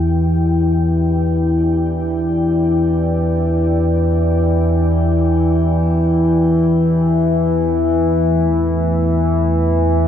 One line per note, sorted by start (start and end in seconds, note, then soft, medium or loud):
0.00 10.08 E2 medium
0.00 10.08 E3 medium
0.00 7.96 E4 medium
0.00 7.97 B4 medium
0.00 7.96 D5 medium
0.00 0.23 E5 medium
0.00 10.08 G5 medium
7.96 10.08 E3 medium
8.11 10.08 A3 medium